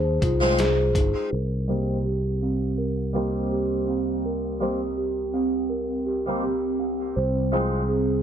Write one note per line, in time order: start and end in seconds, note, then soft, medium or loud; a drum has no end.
0.00 0.18 D#2 medium
0.00 0.97 D#4 loud
0.00 0.60 G#4 medium
0.00 0.42 C5 medium
0.22 0.95 C2 medium
0.22 0.40 F4 medium
0.22 kick medium
0.22 closed hi-hat medium
0.40 0.56 F3 medium
0.40 0.56 G#3 medium
0.40 0.57 C4 medium
0.40 0.57 D#4 loud
0.40 0.58 C5 loud
0.40 snare medium
0.59 0.78 G#4 loud
0.59 snare loud
0.59 closed hi-hat medium
0.95 1.13 G1 medium
0.95 1.15 D#4 medium
0.95 kick loud
0.95 closed hi-hat medium
1.32 7.14 C2 medium
1.32 8.23 C4 medium
1.32 1.67 A#4 medium
1.68 1.95 G3 medium
1.68 1.95 A#3 medium
1.68 1.95 C4 medium
1.68 1.96 D#4 medium
1.68 2.04 G4 medium
2.05 2.24 G4 medium
2.42 2.61 C4 medium
2.78 3.13 A#4 medium
3.13 4.56 G3 medium
3.13 4.57 A#3 medium
3.13 4.57 C4 medium
3.13 4.58 D#4 medium
3.13 3.50 G4 medium
3.52 3.70 G4 medium
3.87 4.06 C4 medium
4.25 4.60 A#4 medium
4.60 4.78 G3 medium
4.60 4.78 A#3 medium
4.60 4.79 C4 medium
4.60 4.79 D#4 medium
4.60 4.96 G4 medium
4.98 5.16 G4 medium
5.34 5.53 C4 medium
5.70 6.05 A#4 medium
6.06 6.42 G4 medium
6.26 6.42 G3 medium
6.26 6.42 A#3 medium
6.26 6.42 C4 medium
6.26 6.43 D#4 medium
6.43 6.62 G4 medium
6.80 6.99 C4 medium
7.16 8.23 C2 medium
7.16 7.52 C5 medium
7.52 7.80 F3 medium
7.52 7.80 G#3 medium
7.52 7.80 C4 medium
7.52 7.80 D#4 medium
7.52 7.88 G#4 medium
7.89 8.08 G#4 medium